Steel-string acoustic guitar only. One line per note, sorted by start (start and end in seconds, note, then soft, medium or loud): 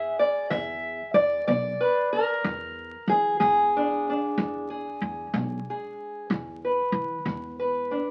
0.00 0.12 B3 medium
0.00 1.80 G#4 soft
0.00 0.19 E5 loud
0.19 0.50 D5 medium
0.50 1.09 E3 medium
0.50 1.14 E5 loud
1.14 1.46 D5 loud
1.47 2.06 B3 medium
1.47 2.44 D5 medium
1.80 2.12 B4 medium
2.13 3.09 A#4 medium
2.44 3.02 E3 medium
3.09 3.39 G#4 medium
3.40 3.99 G#3 medium
3.40 4.69 G#4 medium
3.77 4.09 D4 soft
4.10 6.28 D4 soft
4.38 4.95 E3 medium
4.70 5.66 G#4 soft
5.34 5.92 G#3 medium
5.70 6.28 G#4 soft
6.31 6.88 E3 medium
6.65 7.58 B4 soft
7.26 7.83 G#3 medium
7.59 8.11 B4 soft
7.91 8.11 D4 soft